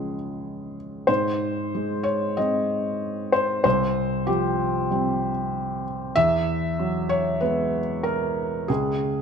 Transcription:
felt piano
Already playing: C#2 F3 G#3 C#4 G#4
1.07 G#2 C5
1.75 G#3
2.03 C#5
2.37 G#3 C4 D#5
3.32 C5
3.64 C2 C5
4.27 F3 G4
4.91 G3 C4
6.16 E2 E5
6.79 F#3
7.09 C#5
7.41 G#3 B3 B4
8.03 A#4
8.68 C#2 G#4

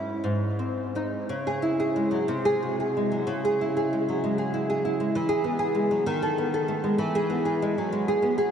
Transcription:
nylon-string guitar
Already playing: G#2 C#4 E4
0.24 G#2
0.59 C4
0.95 C4 D#4
1.29 C#3
1.47 G#4
1.62 E4
1.80 G#4
1.96 G#3
2.11 F#3
2.28 C3
2.45 G#4
2.62 F#4
2.80 G#4
2.97 G#3
3.12 F#3
3.27 C#3
3.45 G#4
3.61 E4
3.77 G#4
3.93 G#3
4.09 F#3
4.24 G#3
4.38 G#4
4.54 E4
4.70 G#4
4.85 E4
5.00 G#3
5.15 E3
5.29 G#4
5.44 B3
5.59 G#4
5.74 G#3
5.91 F#3
6.06 D#3
6.22 A4
6.38 B3
6.54 A4
6.68 A3
6.84 G#3
6.98 E3
7.15 G#4
7.30 B3
7.45 G#4
7.62 G#3
7.78 F#3
7.92 G#3
8.08 G#4
8.22 B3
8.38 G#4

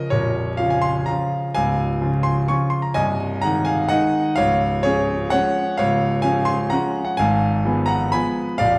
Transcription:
grand piano
Already playing: D#5
0.10 A#0 A#1 A#4 C#5
0.57 C#3 F3 F4 F5
0.70 G#5
0.81 G#5 C6
1.06 C#3 F3 F4 F5 A#5
1.54 C#1 C#2 F5 G#5
2.02 C#3 F3 F4
2.23 G#5 C6
2.48 C#3 F3 F4 G#5 C#6
2.70 C6
2.82 A#5
2.94 C1 C2 D#5 G#5
3.42 D#3 G#3 D#4 F#5 A#5
3.65 F5 G#5
3.89 D#3 G#3 D#4 D#5 F#5
4.36 C#1 C#2 C#5 F5
4.83 F3 G#3 C#4 G#4 C#5
5.30 F3 G#3 C#4 C#5 F#5
5.78 C#1 C#2 C#5 F5
6.22 F3 G#3 C#4 F5 G#5
6.45 G#5 C6
6.70 F3 G#3 C#4 F#5 A#5
7.05 F#5
7.17 G#1 G#2 F5 G#5
7.65 F3 G#3 B3
7.86 F#5 A#5
8.12 F3 G#3 B3 G#5 B5
8.58 A#0 A#1 D5 F5

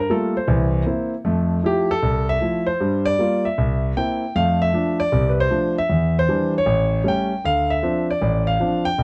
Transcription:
grand piano
0.00 A#4
0.10 G3 A3 A#3 F4 A4
0.37 C5
0.48 C2 E3
0.86 A#3 C4 E4
1.25 F2 A3
1.63 F3 A3 E4 G4
1.91 A4
2.03 C2
2.29 E5
2.41 F3 A3 E4
2.67 C5
2.80 G2 G3
3.06 D5
3.19 G3 A#3 F4
3.45 E5
3.58 C2
3.97 A#3 C4 E4 G5
4.35 F2 A3 F5
4.62 E5
4.73 F3 A3 D4
5.00 D5
5.12 C2 C3
5.29 B4
5.40 C5
5.50 F3 A3 D4
5.78 E5
5.90 E2
6.19 C5
6.29 E3 G3 D4
6.58 C#5
6.66 A1
7.04 G3 A3 C#4
7.08 G5
7.44 D2 F5
7.70 E5
7.83 F3 C4 D4
8.11 D5
8.22 A1
8.47 F5
8.60 F3 C4 D4
8.85 G5
8.99 C2

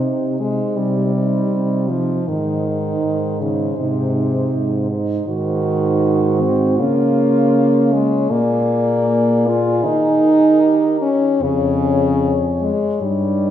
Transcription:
french horn
Already playing: C3 D#4 C5
0.04 C3
0.40 G#3 D#4 C5
0.76 C3 G3
1.14 D#4 C5
1.53 C3
1.88 F3 D#4 C5
2.28 G#2 D#3 D#4 C5
2.67 D#4 C5
3.04 G#2
3.41 C#3 D#4 C5
3.78 G#2 C3
4.15 D#4 C5
4.54 G#2
4.90 D#4 C5
5.27 G#2 D#3 F#4 C5
6.41 C4
6.78 C#3 A#3 F4 C#5
7.93 G#3
8.29 A#2 A#3 G#4 D5
9.48 F4
9.85 D#3 D#4 A#4
10.63 G4
11.01 C#4
11.41 F2 C#3 G#4 C#5
12.61 G#3
13.01 G2 G3 D#4

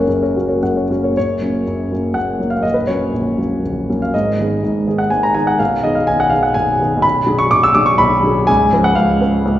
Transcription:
grand piano
Already playing: F#1 F#2 F#3 A#3 C#4 F#4 A#4 C#5 F#5
0.08 F#1 F#2 A#4
0.23 A#4 C#5
0.36 F#3 A#3 C#4 F#4
0.48 A#4 C#5
0.63 F#1 F#2 F#5
0.76 A#4 C#5
0.90 F#3 A#3 C#4 F#4
1.03 A#4 C#5
1.17 F#1 F#2 C#5
1.42 F#3 A#3 C#4
1.67 F#1 F#2
1.92 F#3 A#3 C#4
2.14 F#1 F#2 F#5
2.39 F#3 A#3 C#4
2.50 F5
2.56 A#1
2.63 A#0 D#5
2.74 B4
2.87 F#3 A#3 C#4 C#5
3.13 A#0 A#1
3.38 F#3 A#3 C#4
3.64 A#0 A#1
3.89 F#3 A#3 C#4
4.02 F5
4.14 G#1 G#2 D#5
4.39 D#3 B3 G#4
4.63 G#1 G#2
4.87 D#3 B3 G#4
4.98 F#5
5.10 G#1 G#2 G#5
5.23 A#5
5.34 D#3 B3 G#4 G#5
5.47 F#5
5.59 B0 B1 F5
5.83 D#3 B3 G#4 D#5
5.95 F5
6.07 B0 B1 G#5
6.20 F#5
6.30 D#3 B3 G#4 F5
6.43 F#5
6.54 B0 B1 G#5
6.79 D#3 B3 G#4
6.97 B1
7.02 B0 B5
7.26 F#3 D4 G#4
7.39 C#6
7.51 B0 B1 D6
7.63 E6
7.75 F#3 D4 G#4 D6
7.86 C#6
7.98 B0 B1 B5
8.23 F#3 D4 G#4
8.47 C#1 C#2 G#5
8.72 F3 C#4 B4
8.84 F#5
8.95 C#1 C#2 F5
9.20 F3 C#4 B4
9.45 C#1 C#2

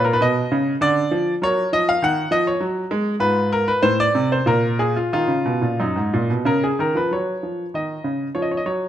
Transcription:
grand piano
Already playing: A#2 D#4
0.04 A#4
0.13 B4
0.21 B2 D#5
0.52 C#3
0.81 D3 D5
1.11 F3
1.42 F#3 A#4 C#5
1.73 F3 D#5
1.89 F5
2.02 D#3 F#5
2.31 F3 D#5
2.47 C#5
2.60 F#3
2.91 G#3
3.20 G#2 F4 B4
3.52 A#4
3.68 B4
3.83 A2 C5
4.00 D5
4.15 C3
4.32 C5
4.46 A#2 A#4
4.79 G#4
4.96 F4
5.13 D#3 D#4 F4
5.28 C#3
5.45 B2
5.62 A#2
5.80 F#2 D#4
5.96 G#2
6.14 A#2
6.30 B2
6.45 C#3 A#4
6.64 G#4
6.79 D#3 A#4
6.95 F3 B4
7.11 F#3 C#5
7.43 F3
7.74 D#3 D#5
8.04 C#3
8.35 F3 C#5
8.42 D#5
8.51 C#5
8.57 D#5
8.66 F#3 C#5

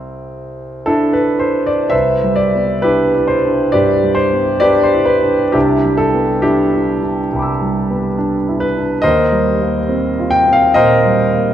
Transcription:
grand piano
Already playing: C2 C4 G4 D5 E5 B5
0.86 D4 E4 A4
1.13 B4
1.39 C5
1.67 D5
1.90 C2 B4 C5 E5
2.24 G3
2.36 D5
2.55 B3
2.82 D4 E4 G4 B4
3.16 E4
3.27 C5
3.45 D4
3.72 G2 G4 B4 D5
4.03 G3
4.15 C5
4.33 B3
4.60 D4 G4 B4 D5
4.83 C5
4.94 E4
5.06 B4
5.23 D4
5.52 C2 D4 E4 G4
5.85 G3
5.97 A4
6.14 B3
6.42 D4 E4 G4
6.73 E4
7.03 D4
7.33 C2 G5 B5
7.39 D6 E6
7.62 G3
7.90 B3
8.18 D4
8.49 E4
8.60 B4
8.78 D4
9.02 D#2 A#4 C5 D#5
9.32 G3
9.61 A#3
9.89 C4
10.19 F4
10.30 G5
10.48 C4
10.53 F5
10.74 A#2 A#4 C5 D#5
11.06 G3
11.35 A#3

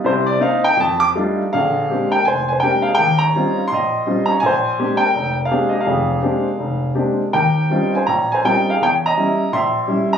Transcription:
upright piano
0.04 C2 C3 C5
0.26 D5
0.40 A#3 C4 D#4 F5
0.64 G5
0.77 F2 A5
1.00 D6
1.15 G3 A3 D4 D#4 F4
1.53 A#1 D3 G#4 F5
1.90 G#3 A#3 C4 D4 G4
2.12 A#4 G5
2.25 F1 C5 G#5
2.49 G#5
2.53 C5
2.60 G#3 A#3 C4 D4 G4 G5
2.64 A#4
2.82 F5
2.87 G#4
2.95 A#4 G5
2.99 D#2
3.19 A#5
3.24 C#5
3.35 G3 C4 C#4 D#4 F4
3.68 A#1 C6
3.74 D#5
4.06 G3 C4 C#4 D#4 F4
4.26 A#5
4.32 C#5
4.40 A#1 G#5
4.46 C5
4.78 G#3 A#3 C4 D4 G4
4.97 G5
5.02 A#4
5.14 F1
5.45 G#4 F5
5.51 G#3 A#3 C4 D4 G4
5.69 D#5
5.74 G4
5.80 F5
5.85 F1 F2 G#4
6.22 G#3 A#3 C4 D4 G4
6.59 F1
6.95 G#3 A#3 C4 D4 G4
7.33 D#2 A#4 G5
7.70 G3 C4 C#4 D#4 F4
7.95 C5 G#5
8.07 A#1 C#5 A#5
8.32 C5 G#5
8.44 G3 C4 C#4 D#4 F4 A#4 G5
8.70 G#4 F5
8.81 E2 C#5 G5
9.06 D#5 A#5
9.17 G3 C#4 E4
9.52 A#1 E5 C6
9.87 G3 C#4 E4
10.13 D#5 A#5

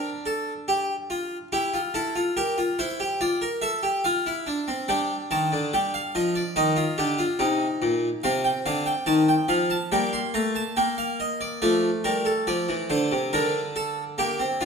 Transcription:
harpsichord
Already playing: D4
0.26 A4
0.68 G4
1.10 F4
1.52 E4 G4
1.74 F4
1.94 E4 A4
2.16 F4
2.37 G4 A#4
2.58 F4
2.79 E4 C5
3.00 G4
3.21 F4 D5
3.42 A#4
3.62 A4 E5
3.83 G4
4.04 F4 F5
4.26 E4
4.47 D4
4.68 C4
4.88 G3 D4 G5
5.31 D#3 A5
5.52 D3
5.73 G3 G5
5.94 F5
6.15 F3 D#5
6.35 D5
6.56 D#3 D#4 D#5
6.76 F4
6.98 D3 G4
7.19 F4
7.39 C3 D#4
7.82 A#2
8.23 C3 C4 F5
8.44 G5
8.66 D3 F5
8.86 G5
9.06 D#3 A5
9.28 G5
9.48 F3 F5
9.70 A5
9.92 G3 A#3 G5
10.13 C6
10.34 A3 A#5
10.55 A5
10.77 A#3 G5
10.98 F5
11.20 D#5
11.41 D5
11.62 F3 A3 D5
12.04 G3 A#4
12.25 A4
12.47 F3 D5
12.69 E3
12.90 D3 C5
13.12 C3
13.33 D3 D4 A#4
13.76 A4
14.18 A#3 G4
14.39 C4
14.61 D4 F4

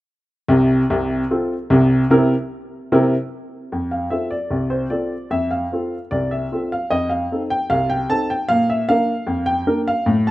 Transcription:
upright piano
0.48 C2 C3
0.90 C2 C3
1.31 C4 F4 A4
1.70 C2 C3
2.10 C3 C4 E4 A#4
2.92 C3 C4 E4 A#4
3.72 F2
3.91 F5
4.10 C4 F4 A4 E5
4.31 D5
4.51 C2
4.70 C5
4.90 C4 F4 A4 D5
5.30 F2 E5
5.51 F5
5.72 C4 F4 A4
6.11 C2 D5
6.31 E5
6.52 C4 F4 A4
6.72 F5
6.90 F2 D#5
7.09 F5
7.32 C4 D#4 A4
7.50 G5
7.70 C2 F5
7.90 G5
8.10 C4 D#4 A4 A5
8.30 G5
8.49 A#2 F5
8.70 E5
8.89 A#3 D4 A#4 F5
9.27 F2
9.46 G5
9.67 A#3 D4 A#4
9.88 F5
10.06 A2
10.27 A5

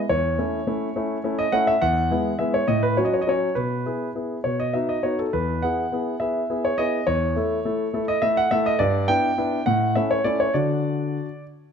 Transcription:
grand piano
0.09 E2 C#5
0.38 A3 C#4 E4
0.67 A3 C#4 E4
0.96 A3 C#4 E4
1.24 A3 C#4 E4
1.39 D#5
1.52 A3 C#4 E4 F#5
1.67 E5
1.82 E2 F#5
2.11 G#3 B3 E4
2.39 G#3 B3 E4 E5
2.54 C#5
2.68 A2 D#5
2.83 B4
2.97 F#3 C#4 F#4 C#5
3.05 D#5
3.14 C#5
3.21 D#5
3.27 F#3 C#4 F#4 C#5
3.55 B2 B4
3.85 B3 E4 G#4
4.15 B3 E4 G#4
4.44 B2 C#5
4.60 D#5
4.73 B3 D#4 F#4 E5
4.89 D#5
5.03 B3 D#4 F#4 C#5
5.19 A4
5.33 E2 B4
5.62 B3 E4 G#4 F#5
5.92 B3 E4 G#4
6.20 B3 E4 G#4 E5
6.50 B3 E4 G#4
6.65 C#5
6.78 B3 E4 G#4 D#5
7.07 E2 C#5
7.36 A3 E4 A4
7.65 A3 E4 A4
7.94 A3 E4 A4
8.08 D#5
8.22 A3 E4 A4 E5
8.37 F#5
8.51 A3 E4 A4 E5
8.66 D#5
8.79 G2 D5
9.08 B3 D4 E4 G5
9.38 B3 D4 E4
9.66 A2 F#5
9.95 A3 C#4 E4 E5
10.11 C#5
10.24 A3 C#4 E4 D5
10.40 C#5
10.54 D3 D4 F#4 D5

